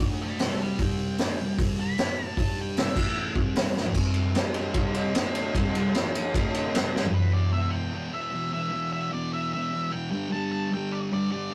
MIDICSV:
0, 0, Header, 1, 4, 480
1, 0, Start_track
1, 0, Key_signature, 1, "minor"
1, 0, Tempo, 397088
1, 959, Time_signature, 4, 2, 24, 8
1, 13952, End_track
2, 0, Start_track
2, 0, Title_t, "Lead electric guitar"
2, 0, Program_c, 0, 29
2, 271, Note_on_c, 0, 79, 90
2, 280, Note_on_c, 0, 83, 95
2, 477, Note_on_c, 0, 76, 79
2, 482, Note_off_c, 0, 79, 0
2, 487, Note_on_c, 0, 81, 93
2, 493, Note_off_c, 0, 83, 0
2, 701, Note_off_c, 0, 76, 0
2, 716, Note_off_c, 0, 81, 0
2, 754, Note_on_c, 0, 74, 98
2, 754, Note_on_c, 0, 79, 102
2, 961, Note_off_c, 0, 74, 0
2, 968, Note_off_c, 0, 79, 0
2, 993, Note_on_c, 0, 79, 105
2, 1906, Note_off_c, 0, 79, 0
2, 2180, Note_on_c, 0, 83, 116
2, 2866, Note_off_c, 0, 83, 0
2, 2902, Note_on_c, 0, 81, 96
2, 3121, Note_off_c, 0, 81, 0
2, 3163, Note_on_c, 0, 79, 93
2, 3372, Note_off_c, 0, 79, 0
2, 3392, Note_on_c, 0, 76, 117
2, 3606, Note_off_c, 0, 76, 0
2, 3631, Note_on_c, 0, 76, 112
2, 3845, Note_off_c, 0, 76, 0
2, 8634, Note_on_c, 0, 71, 97
2, 8854, Note_off_c, 0, 71, 0
2, 8866, Note_on_c, 0, 74, 84
2, 9096, Note_off_c, 0, 74, 0
2, 9101, Note_on_c, 0, 76, 110
2, 9312, Note_on_c, 0, 79, 110
2, 9351, Note_off_c, 0, 76, 0
2, 9825, Note_off_c, 0, 79, 0
2, 9831, Note_on_c, 0, 76, 104
2, 10298, Note_off_c, 0, 76, 0
2, 10313, Note_on_c, 0, 76, 114
2, 10758, Note_off_c, 0, 76, 0
2, 10791, Note_on_c, 0, 76, 92
2, 11013, Note_off_c, 0, 76, 0
2, 11037, Note_on_c, 0, 74, 113
2, 11257, Note_off_c, 0, 74, 0
2, 11281, Note_on_c, 0, 76, 107
2, 11509, Note_off_c, 0, 76, 0
2, 11524, Note_on_c, 0, 76, 113
2, 11990, Note_on_c, 0, 79, 95
2, 12013, Note_off_c, 0, 76, 0
2, 12215, Note_off_c, 0, 79, 0
2, 12230, Note_on_c, 0, 79, 109
2, 12475, Note_off_c, 0, 79, 0
2, 12480, Note_on_c, 0, 81, 110
2, 12702, Note_off_c, 0, 81, 0
2, 12716, Note_on_c, 0, 81, 104
2, 12963, Note_off_c, 0, 81, 0
2, 12981, Note_on_c, 0, 79, 118
2, 13201, Note_on_c, 0, 74, 107
2, 13216, Note_off_c, 0, 79, 0
2, 13265, Note_off_c, 0, 74, 0
2, 13458, Note_on_c, 0, 74, 113
2, 13666, Note_off_c, 0, 74, 0
2, 13680, Note_on_c, 0, 74, 107
2, 13952, Note_off_c, 0, 74, 0
2, 13952, End_track
3, 0, Start_track
3, 0, Title_t, "Distorted electric guitar"
3, 0, Program_c, 1, 30
3, 2, Note_on_c, 1, 50, 88
3, 12, Note_on_c, 1, 57, 97
3, 27, Note_on_c, 1, 62, 126
3, 473, Note_off_c, 1, 50, 0
3, 478, Note_off_c, 1, 57, 0
3, 478, Note_on_c, 1, 48, 103
3, 486, Note_off_c, 1, 62, 0
3, 494, Note_on_c, 1, 55, 93
3, 498, Note_on_c, 1, 60, 99
3, 951, Note_off_c, 1, 48, 0
3, 959, Note_off_c, 1, 55, 0
3, 961, Note_off_c, 1, 60, 0
3, 973, Note_on_c, 1, 48, 91
3, 988, Note_on_c, 1, 55, 102
3, 988, Note_on_c, 1, 60, 93
3, 1438, Note_off_c, 1, 48, 0
3, 1443, Note_on_c, 1, 50, 88
3, 1445, Note_off_c, 1, 55, 0
3, 1446, Note_off_c, 1, 60, 0
3, 1454, Note_on_c, 1, 57, 117
3, 1459, Note_on_c, 1, 62, 119
3, 1673, Note_off_c, 1, 50, 0
3, 1679, Note_off_c, 1, 57, 0
3, 1681, Note_off_c, 1, 62, 0
3, 1683, Note_on_c, 1, 48, 66
3, 1692, Note_on_c, 1, 55, 75
3, 1872, Note_off_c, 1, 48, 0
3, 1876, Note_off_c, 1, 55, 0
3, 1918, Note_on_c, 1, 48, 104
3, 1931, Note_on_c, 1, 55, 102
3, 1940, Note_on_c, 1, 60, 112
3, 2389, Note_off_c, 1, 48, 0
3, 2391, Note_off_c, 1, 55, 0
3, 2396, Note_on_c, 1, 57, 84
3, 2400, Note_off_c, 1, 60, 0
3, 2411, Note_on_c, 1, 64, 95
3, 2422, Note_on_c, 1, 69, 109
3, 2868, Note_off_c, 1, 57, 0
3, 2875, Note_off_c, 1, 64, 0
3, 2875, Note_on_c, 1, 55, 100
3, 2881, Note_off_c, 1, 69, 0
3, 2889, Note_on_c, 1, 62, 95
3, 2894, Note_on_c, 1, 67, 105
3, 3342, Note_on_c, 1, 48, 110
3, 3347, Note_off_c, 1, 55, 0
3, 3354, Note_off_c, 1, 62, 0
3, 3356, Note_off_c, 1, 67, 0
3, 3362, Note_on_c, 1, 55, 97
3, 3369, Note_on_c, 1, 60, 97
3, 3580, Note_off_c, 1, 48, 0
3, 3590, Note_off_c, 1, 55, 0
3, 3594, Note_off_c, 1, 60, 0
3, 3595, Note_on_c, 1, 45, 87
3, 3609, Note_on_c, 1, 52, 97
3, 3621, Note_on_c, 1, 57, 120
3, 4060, Note_off_c, 1, 45, 0
3, 4065, Note_on_c, 1, 48, 91
3, 4073, Note_off_c, 1, 52, 0
3, 4078, Note_off_c, 1, 57, 0
3, 4078, Note_on_c, 1, 55, 107
3, 4083, Note_on_c, 1, 60, 101
3, 4540, Note_off_c, 1, 48, 0
3, 4547, Note_off_c, 1, 55, 0
3, 4549, Note_off_c, 1, 60, 0
3, 4550, Note_on_c, 1, 50, 100
3, 4566, Note_on_c, 1, 57, 98
3, 4568, Note_on_c, 1, 62, 96
3, 4781, Note_off_c, 1, 50, 0
3, 4786, Note_on_c, 1, 48, 106
3, 4791, Note_off_c, 1, 57, 0
3, 4792, Note_off_c, 1, 62, 0
3, 4803, Note_on_c, 1, 55, 109
3, 4808, Note_on_c, 1, 60, 105
3, 5259, Note_off_c, 1, 55, 0
3, 5260, Note_off_c, 1, 48, 0
3, 5271, Note_off_c, 1, 60, 0
3, 5273, Note_on_c, 1, 55, 92
3, 5283, Note_on_c, 1, 62, 103
3, 5297, Note_on_c, 1, 67, 108
3, 5743, Note_off_c, 1, 55, 0
3, 5748, Note_off_c, 1, 62, 0
3, 5750, Note_on_c, 1, 48, 90
3, 5755, Note_off_c, 1, 67, 0
3, 5768, Note_on_c, 1, 55, 101
3, 5770, Note_on_c, 1, 60, 102
3, 6214, Note_off_c, 1, 48, 0
3, 6219, Note_on_c, 1, 50, 88
3, 6227, Note_off_c, 1, 55, 0
3, 6232, Note_off_c, 1, 60, 0
3, 6232, Note_on_c, 1, 57, 99
3, 6242, Note_on_c, 1, 62, 106
3, 6696, Note_off_c, 1, 50, 0
3, 6702, Note_off_c, 1, 57, 0
3, 6707, Note_off_c, 1, 62, 0
3, 6715, Note_on_c, 1, 48, 90
3, 6723, Note_on_c, 1, 55, 105
3, 6731, Note_on_c, 1, 60, 120
3, 6940, Note_off_c, 1, 48, 0
3, 6943, Note_off_c, 1, 55, 0
3, 6952, Note_off_c, 1, 60, 0
3, 6954, Note_on_c, 1, 48, 60
3, 6958, Note_on_c, 1, 55, 68
3, 7143, Note_off_c, 1, 48, 0
3, 7144, Note_off_c, 1, 55, 0
3, 7174, Note_on_c, 1, 45, 88
3, 7194, Note_on_c, 1, 52, 105
3, 7200, Note_on_c, 1, 57, 109
3, 7413, Note_off_c, 1, 45, 0
3, 7423, Note_off_c, 1, 52, 0
3, 7426, Note_off_c, 1, 57, 0
3, 7662, Note_on_c, 1, 50, 97
3, 7678, Note_on_c, 1, 57, 108
3, 7688, Note_on_c, 1, 62, 101
3, 8137, Note_off_c, 1, 50, 0
3, 8145, Note_off_c, 1, 57, 0
3, 8150, Note_off_c, 1, 62, 0
3, 8152, Note_on_c, 1, 48, 104
3, 8165, Note_on_c, 1, 55, 95
3, 8169, Note_on_c, 1, 60, 105
3, 8371, Note_off_c, 1, 55, 0
3, 8382, Note_off_c, 1, 48, 0
3, 8386, Note_on_c, 1, 55, 89
3, 8391, Note_off_c, 1, 60, 0
3, 8399, Note_on_c, 1, 62, 102
3, 8405, Note_on_c, 1, 67, 103
3, 8613, Note_on_c, 1, 40, 101
3, 8619, Note_off_c, 1, 55, 0
3, 8626, Note_off_c, 1, 62, 0
3, 8629, Note_off_c, 1, 67, 0
3, 8645, Note_on_c, 1, 47, 106
3, 8671, Note_on_c, 1, 52, 89
3, 9084, Note_off_c, 1, 40, 0
3, 9089, Note_on_c, 1, 40, 92
3, 9104, Note_off_c, 1, 47, 0
3, 9118, Note_on_c, 1, 47, 111
3, 9140, Note_off_c, 1, 52, 0
3, 9145, Note_on_c, 1, 52, 110
3, 9558, Note_off_c, 1, 40, 0
3, 9572, Note_on_c, 1, 40, 81
3, 9586, Note_off_c, 1, 47, 0
3, 9601, Note_on_c, 1, 47, 97
3, 9607, Note_off_c, 1, 52, 0
3, 9622, Note_on_c, 1, 52, 95
3, 9790, Note_off_c, 1, 52, 0
3, 9804, Note_on_c, 1, 52, 88
3, 9846, Note_off_c, 1, 47, 0
3, 9860, Note_on_c, 1, 47, 62
3, 10035, Note_off_c, 1, 40, 0
3, 10050, Note_on_c, 1, 40, 80
3, 10064, Note_off_c, 1, 47, 0
3, 10078, Note_on_c, 1, 47, 87
3, 10087, Note_off_c, 1, 52, 0
3, 10101, Note_on_c, 1, 52, 93
3, 10289, Note_off_c, 1, 52, 0
3, 10304, Note_on_c, 1, 52, 77
3, 10341, Note_off_c, 1, 47, 0
3, 10355, Note_on_c, 1, 47, 63
3, 10514, Note_off_c, 1, 40, 0
3, 10528, Note_on_c, 1, 40, 104
3, 10544, Note_off_c, 1, 47, 0
3, 10559, Note_on_c, 1, 47, 109
3, 10565, Note_off_c, 1, 52, 0
3, 10579, Note_on_c, 1, 52, 108
3, 10999, Note_off_c, 1, 40, 0
3, 11013, Note_on_c, 1, 40, 101
3, 11033, Note_off_c, 1, 47, 0
3, 11048, Note_on_c, 1, 47, 111
3, 11055, Note_off_c, 1, 52, 0
3, 11069, Note_on_c, 1, 52, 104
3, 11487, Note_off_c, 1, 40, 0
3, 11502, Note_on_c, 1, 40, 82
3, 11520, Note_off_c, 1, 47, 0
3, 11534, Note_on_c, 1, 47, 83
3, 11547, Note_off_c, 1, 52, 0
3, 11562, Note_on_c, 1, 52, 91
3, 11729, Note_off_c, 1, 52, 0
3, 11743, Note_on_c, 1, 52, 95
3, 11788, Note_off_c, 1, 47, 0
3, 11802, Note_on_c, 1, 47, 68
3, 11963, Note_off_c, 1, 40, 0
3, 11978, Note_on_c, 1, 40, 76
3, 11990, Note_off_c, 1, 47, 0
3, 12004, Note_on_c, 1, 47, 75
3, 12021, Note_off_c, 1, 52, 0
3, 12035, Note_on_c, 1, 52, 94
3, 12211, Note_off_c, 1, 40, 0
3, 12213, Note_off_c, 1, 52, 0
3, 12218, Note_on_c, 1, 55, 93
3, 12224, Note_off_c, 1, 47, 0
3, 12243, Note_on_c, 1, 50, 93
3, 12271, Note_on_c, 1, 43, 84
3, 12442, Note_off_c, 1, 43, 0
3, 12447, Note_on_c, 1, 43, 99
3, 12465, Note_off_c, 1, 50, 0
3, 12480, Note_on_c, 1, 50, 107
3, 12501, Note_off_c, 1, 55, 0
3, 12506, Note_on_c, 1, 55, 126
3, 12937, Note_off_c, 1, 43, 0
3, 12942, Note_on_c, 1, 43, 93
3, 12958, Note_off_c, 1, 50, 0
3, 12973, Note_on_c, 1, 50, 100
3, 12996, Note_off_c, 1, 55, 0
3, 13000, Note_on_c, 1, 55, 117
3, 13415, Note_off_c, 1, 43, 0
3, 13429, Note_on_c, 1, 43, 84
3, 13438, Note_off_c, 1, 50, 0
3, 13453, Note_on_c, 1, 50, 84
3, 13475, Note_off_c, 1, 55, 0
3, 13480, Note_on_c, 1, 55, 94
3, 13666, Note_off_c, 1, 55, 0
3, 13671, Note_on_c, 1, 55, 80
3, 13712, Note_off_c, 1, 50, 0
3, 13727, Note_on_c, 1, 50, 69
3, 13901, Note_off_c, 1, 43, 0
3, 13928, Note_off_c, 1, 50, 0
3, 13952, Note_off_c, 1, 55, 0
3, 13952, End_track
4, 0, Start_track
4, 0, Title_t, "Drums"
4, 470, Note_on_c, 9, 46, 61
4, 486, Note_on_c, 9, 38, 112
4, 591, Note_off_c, 9, 46, 0
4, 607, Note_off_c, 9, 38, 0
4, 951, Note_on_c, 9, 46, 55
4, 955, Note_on_c, 9, 36, 100
4, 1072, Note_off_c, 9, 46, 0
4, 1076, Note_off_c, 9, 36, 0
4, 1428, Note_on_c, 9, 46, 59
4, 1444, Note_on_c, 9, 38, 107
4, 1549, Note_off_c, 9, 46, 0
4, 1565, Note_off_c, 9, 38, 0
4, 1917, Note_on_c, 9, 36, 118
4, 1920, Note_on_c, 9, 46, 63
4, 2037, Note_off_c, 9, 36, 0
4, 2040, Note_off_c, 9, 46, 0
4, 2390, Note_on_c, 9, 46, 62
4, 2405, Note_on_c, 9, 38, 116
4, 2511, Note_off_c, 9, 46, 0
4, 2526, Note_off_c, 9, 38, 0
4, 2868, Note_on_c, 9, 36, 108
4, 2877, Note_on_c, 9, 46, 56
4, 2989, Note_off_c, 9, 36, 0
4, 2998, Note_off_c, 9, 46, 0
4, 3346, Note_on_c, 9, 46, 63
4, 3361, Note_on_c, 9, 38, 109
4, 3467, Note_off_c, 9, 46, 0
4, 3482, Note_off_c, 9, 38, 0
4, 3578, Note_on_c, 9, 36, 119
4, 3582, Note_on_c, 9, 49, 111
4, 3699, Note_off_c, 9, 36, 0
4, 3703, Note_off_c, 9, 49, 0
4, 4056, Note_on_c, 9, 36, 107
4, 4177, Note_off_c, 9, 36, 0
4, 4297, Note_on_c, 9, 46, 66
4, 4312, Note_on_c, 9, 38, 125
4, 4417, Note_off_c, 9, 46, 0
4, 4433, Note_off_c, 9, 38, 0
4, 4556, Note_on_c, 9, 38, 72
4, 4656, Note_on_c, 9, 43, 94
4, 4677, Note_off_c, 9, 38, 0
4, 4769, Note_on_c, 9, 36, 98
4, 4771, Note_on_c, 9, 57, 121
4, 4777, Note_off_c, 9, 43, 0
4, 4890, Note_off_c, 9, 36, 0
4, 4892, Note_off_c, 9, 57, 0
4, 5002, Note_on_c, 9, 51, 74
4, 5123, Note_off_c, 9, 51, 0
4, 5256, Note_on_c, 9, 51, 94
4, 5271, Note_on_c, 9, 38, 118
4, 5377, Note_off_c, 9, 51, 0
4, 5392, Note_off_c, 9, 38, 0
4, 5488, Note_on_c, 9, 51, 77
4, 5609, Note_off_c, 9, 51, 0
4, 5730, Note_on_c, 9, 51, 99
4, 5736, Note_on_c, 9, 36, 116
4, 5851, Note_off_c, 9, 51, 0
4, 5857, Note_off_c, 9, 36, 0
4, 5976, Note_on_c, 9, 51, 75
4, 6097, Note_off_c, 9, 51, 0
4, 6221, Note_on_c, 9, 51, 113
4, 6237, Note_on_c, 9, 38, 125
4, 6342, Note_off_c, 9, 51, 0
4, 6358, Note_off_c, 9, 38, 0
4, 6465, Note_on_c, 9, 51, 95
4, 6586, Note_off_c, 9, 51, 0
4, 6704, Note_on_c, 9, 36, 106
4, 6710, Note_on_c, 9, 51, 110
4, 6825, Note_off_c, 9, 36, 0
4, 6831, Note_off_c, 9, 51, 0
4, 6950, Note_on_c, 9, 51, 74
4, 7071, Note_off_c, 9, 51, 0
4, 7187, Note_on_c, 9, 51, 91
4, 7202, Note_on_c, 9, 38, 99
4, 7307, Note_off_c, 9, 51, 0
4, 7323, Note_off_c, 9, 38, 0
4, 7436, Note_on_c, 9, 51, 92
4, 7557, Note_off_c, 9, 51, 0
4, 7669, Note_on_c, 9, 36, 116
4, 7677, Note_on_c, 9, 51, 112
4, 7790, Note_off_c, 9, 36, 0
4, 7798, Note_off_c, 9, 51, 0
4, 7911, Note_on_c, 9, 51, 82
4, 8032, Note_off_c, 9, 51, 0
4, 8156, Note_on_c, 9, 51, 115
4, 8172, Note_on_c, 9, 38, 120
4, 8277, Note_off_c, 9, 51, 0
4, 8292, Note_off_c, 9, 38, 0
4, 8414, Note_on_c, 9, 38, 78
4, 8519, Note_on_c, 9, 43, 104
4, 8535, Note_off_c, 9, 38, 0
4, 8640, Note_off_c, 9, 43, 0
4, 13952, End_track
0, 0, End_of_file